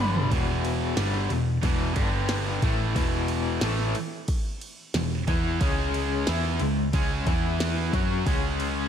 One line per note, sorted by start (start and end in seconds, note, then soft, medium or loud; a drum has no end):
0.00 0.29 G1 loud
0.00 0.30 G2 medium
0.00 0.30 D3 medium
0.00 0.31 G3 loud
0.00 0.29 B5 loud
0.15 floor tom loud
0.30 0.93 E1 medium
0.30 0.96 E2 loud
0.30 0.96 B2 loud
0.30 0.97 E3 loud
0.30 kick loud
0.30 ride medium
0.65 ride medium
0.96 1.28 G1 medium
0.96 1.29 G2 medium
0.96 1.29 D3 loud
0.96 1.30 G3 loud
0.96 snare loud
0.96 ride medium
1.14 snare soft
1.30 1.61 E1 medium
1.30 1.57 E2 medium
1.30 1.57 B2 medium
1.30 ride medium
1.62 1.94 E1 loud
1.62 1.96 E2 medium
1.62 1.96 B2 loud
1.62 1.97 E3 loud
1.62 kick loud
1.62 ride loud
1.96 2.59 G1 medium
1.96 2.62 G2 loud
1.96 2.62 D3 loud
1.96 2.62 G3 medium
1.96 kick loud
1.96 ride medium
2.29 snare loud
2.29 ride loud
2.62 2.93 A1 loud
2.62 2.95 A2 loud
2.62 2.95 E3 loud
2.62 2.95 A3 loud
2.62 kick loud
2.62 ride medium
2.95 3.58 E1 medium
2.95 3.61 E2 medium
2.95 3.61 B2 loud
2.95 3.61 E3 loud
2.95 kick loud
2.95 ride loud
3.28 ride medium
3.61 3.93 A1 medium
3.61 3.94 A2 medium
3.61 3.94 E3 loud
3.61 3.95 A3 medium
3.61 snare loud
3.61 ride loud
3.79 snare soft
3.95 ride medium
4.28 kick loud
4.28 ride loud
4.61 ride medium
4.94 5.26 E1 medium
4.94 5.21 E2 medium
4.94 5.22 B2 medium
4.94 snare loud
4.94 ride loud
5.28 5.59 E2 loud
5.28 5.60 E3 medium
5.28 5.61 B3 medium
5.28 5.61 E4 loud
5.28 kick loud
5.28 ride medium
5.61 6.23 C#2 medium
5.61 6.26 C#3 loud
5.61 6.27 G#3 loud
5.61 6.27 C#4 loud
5.61 kick loud
5.61 ride medium
5.94 ride medium
6.27 6.59 E2 loud
6.27 6.59 E3 medium
6.27 6.60 B3 medium
6.27 6.60 E4 loud
6.27 snare loud
6.27 ride loud
6.59 6.91 C#2 medium
6.59 6.87 C#3 medium
6.59 6.87 G#3 medium
6.59 ride medium
6.92 7.25 C#2 medium
6.92 7.25 C#3 medium
6.92 7.26 G#3 loud
6.92 7.26 C#4 loud
6.92 kick loud
6.92 ride medium
7.26 7.89 E2 loud
7.26 7.92 E3 medium
7.26 7.93 B3 loud
7.26 7.93 E4 loud
7.26 kick loud
7.26 ride medium
7.60 snare loud
7.60 ride loud
7.92 8.24 F#2 medium
7.92 8.25 F#3 medium
7.92 8.26 C#4 loud
7.92 8.26 F#4 loud
7.92 kick loud
7.92 ride medium
8.26 8.88 C#2 medium
8.26 8.88 C#3 loud
8.26 8.88 G#3 loud
8.26 8.88 C#4 loud
8.26 kick loud
8.26 ride loud
8.60 ride medium